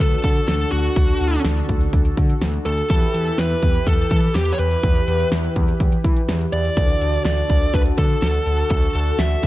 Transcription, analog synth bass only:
0.00 0.17 D2 loud
0.24 0.41 D3 loud
0.48 0.65 D2 medium
0.72 0.89 D2 loud
0.96 1.13 D2 loud
1.21 1.37 D2 loud
1.45 1.62 D2 loud
1.69 1.86 D2 loud
1.93 2.10 D2 loud
2.17 2.34 D3 medium
2.41 2.58 D2 loud
2.66 2.83 D2 loud
2.90 3.07 E2 loud
3.14 3.31 E2 loud
3.38 3.55 E2 loud
3.63 3.79 E2 loud
3.87 4.04 E2 loud
4.11 4.28 E3 loud
4.35 4.52 E2 loud
4.59 4.76 E2 loud
4.83 5.00 E2 loud
5.08 5.25 E2 loud
5.32 5.49 E2 medium
5.56 5.73 E2 loud
5.80 5.97 E2 medium
6.04 6.21 E3 loud
6.29 6.46 E2 loud
6.53 6.70 E2 loud
6.77 6.94 D2 loud
7.01 7.18 D2 medium
7.25 7.42 D2 loud
7.50 7.67 D2 loud
7.74 7.91 D2 loud
7.98 8.15 D3 loud
8.22 8.39 D2 loud
8.46 8.63 D2 loud
8.71 8.87 D2 loud
8.95 9.12 D2 loud
9.19 9.36 D2 loud
9.43 9.47 D2 loud

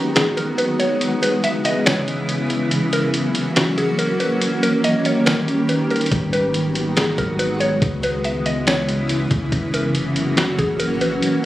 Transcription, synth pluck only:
0.16 0.36 G#4 medium
0.37 0.57 A#4 medium
0.58 0.78 B4 medium
0.79 1.00 C#5 medium
1.23 1.43 B4 medium
1.44 1.64 E5 medium
1.65 1.85 D#5 medium
1.86 2.26 C#5 medium
2.93 3.13 A#4 medium
3.56 3.77 F#4 medium
3.78 3.98 G#4 medium
3.99 4.19 A#4 medium
4.20 4.40 B4 medium
4.63 4.83 A#4 medium
4.84 5.04 D#5 loud
5.06 5.26 C#5 medium
5.26 5.66 A#4 medium
5.69 5.89 B4 medium
5.91 6.11 A#4 medium
6.33 6.53 B4 medium
6.97 7.17 G#4 medium
7.18 7.38 A#4 medium
7.39 7.59 B4 medium
7.60 7.81 C#5 medium
8.04 8.24 B4 medium
8.25 8.45 E5 medium
8.46 8.66 D#5 medium
8.67 9.07 C#5 medium
9.74 9.94 A#4 medium
10.37 10.57 F#4 medium
10.58 10.79 G#4 medium
10.79 11.00 A#4 medium
11.01 11.21 B4 medium

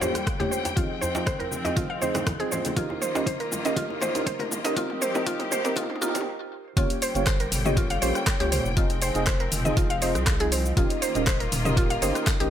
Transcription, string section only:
0.00 0.75 D3 medium
0.00 0.75 G3 medium
0.00 2.73 G5 medium
0.77 2.75 F3 medium
0.77 2.75 C4 medium
2.76 4.75 D#3 medium
2.76 4.75 A#3 medium
2.76 4.75 F4 medium
4.77 6.25 F3 medium
4.77 6.25 C4 medium
4.77 6.25 G4 medium
6.77 8.75 D3 medium
6.77 8.75 G3 medium
6.77 10.73 G5 medium
8.77 10.75 F3 medium
8.77 10.75 C4 medium
10.77 12.50 D#3 medium
10.77 12.50 A#3 medium
10.77 12.50 F4 medium

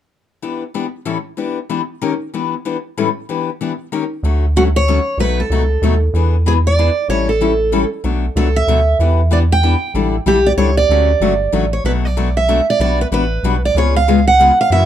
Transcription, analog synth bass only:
4.23 4.99 D2 medium
5.17 5.43 B1 medium
5.50 5.77 C#2 medium
5.82 6.09 D#2 medium
6.13 6.90 E2 medium
7.09 7.85 A1 medium
8.04 8.29 B1 medium
8.36 8.63 C#2 medium
8.67 8.94 D2 medium
8.99 9.75 E2 medium
9.94 10.20 A1 medium
10.26 10.53 B1 medium
10.57 10.85 C#2 medium
10.89 11.15 D2 medium
11.20 11.48 G1 medium
11.53 11.80 A1 medium
11.84 12.61 B1 medium
12.80 13.05 B1 medium
13.12 13.39 A1 medium
13.43 13.70 B1 medium
13.75 14.51 C#2 medium
14.70 14.86 F#2 medium

